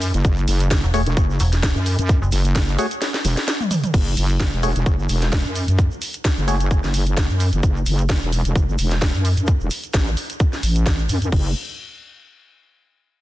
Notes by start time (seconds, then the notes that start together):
Already playing: F#2
0.02 open hi-hat, shaker
0.14 F#1, closed hi-hat, shaker
0.24 F#1, kick, closed hi-hat, shaker
0.37 shaker
0.48 F#1, open hi-hat, shaker
0.60 closed hi-hat, shaker
0.71 kick, snare, closed hi-hat, shaker
0.83 E1, shaker
0.94 A3 F#4 G#4 C#5, open hi-hat, shaker
1.06 E1, closed hi-hat, shaker
1.17 F#1, kick, closed hi-hat, shaker
1.30 shaker
1.40 E1, open hi-hat, shaker
1.52 snare, closed hi-hat, shaker
1.63 kick, snare, closed hi-hat, shaker
1.76 F#2, shaker
1.86 open hi-hat, shaker
1.99 F#2, closed hi-hat, shaker
2.09 kick, closed hi-hat, shaker
2.22 F#1, shaker
2.32 F#1, open hi-hat, shaker
2.45 closed hi-hat, shaker
2.55 kick, snare, closed hi-hat, shaker
2.68 shaker
2.79 A3 F#4 G#4 C#5, open hi-hat, shaker
2.91 closed hi-hat, shaker
3.02 snare, closed hi-hat, shaker
3.14 snare, shaker
3.25 E1, open hi-hat, shaker
3.37 snare, closed hi-hat, shaker
3.48 snare, closed hi-hat, shaker
3.60 mid tom, shaker
3.71 mid tom, open hi-hat, shaker
3.84 closed hi-hat, mid tom, shaker
3.94 F#1, kick, closed hi-hat, crash, shaker
4.06 shaker
4.17 F#1, open hi-hat, shaker
4.29 closed hi-hat, shaker
4.40 kick, snare, closed hi-hat, shaker
4.53 E1, shaker
4.63 A3 F#4 G#4 C#5, open hi-hat, shaker
4.75 E1, closed hi-hat, shaker
4.86 F#1, kick, closed hi-hat, shaker
4.99 shaker
5.09 E1, open hi-hat, shaker
5.22 snare, closed hi-hat, shaker
5.32 kick, snare, closed hi-hat, shaker
5.45 F#2, shaker
5.55 open hi-hat, shaker
5.68 F#2, closed hi-hat, shaker
5.78 kick, closed hi-hat, shaker
5.91 shaker
6.02 open hi-hat, shaker
6.14 closed hi-hat, shaker
6.25 kick, snare, closed hi-hat, shaker
6.37 F#1, shaker
6.48 A3 F#4 G#4 C#5, open hi-hat, shaker
6.60 closed hi-hat, shaker
6.71 kick, closed hi-hat, shaker
6.83 F#1, snare, shaker
6.94 open hi-hat, shaker
7.07 closed hi-hat, shaker
7.17 kick, snare, closed hi-hat, shaker
7.29 F#2, shaker
7.40 open hi-hat, shaker
7.53 F#1, closed hi-hat, shaker
7.63 F#1, kick, closed hi-hat, shaker
7.76 shaker
7.86 F#1, open hi-hat, shaker
7.99 closed hi-hat, shaker
8.09 kick, snare, closed hi-hat, shaker
8.22 E1, shaker
8.33 open hi-hat, shaker
8.45 E1, closed hi-hat, shaker
8.56 F#1, kick, closed hi-hat, shaker
8.69 shaker
8.79 E1, open hi-hat, shaker
8.91 snare, closed hi-hat, shaker
9.02 kick, snare, closed hi-hat, shaker
9.14 F#2, shaker
9.25 open hi-hat, shaker
9.37 F#2, closed hi-hat, shaker
9.47 kick, closed hi-hat, shaker
9.60 E1, shaker
9.71 open hi-hat, shaker
9.84 closed hi-hat, shaker
9.93 A1, kick, snare, closed hi-hat, shaker
10.06 shaker
10.17 open hi-hat, shaker
10.30 closed hi-hat, shaker
10.40 kick, closed hi-hat, shaker
10.53 snare, shaker
10.63 A1, open hi-hat, shaker
10.76 closed hi-hat, shaker
10.86 kick, snare, closed hi-hat, shaker
10.98 shaker
11.09 F#2, open hi-hat, shaker
11.22 closed hi-hat, shaker
11.32 F#1, kick, crash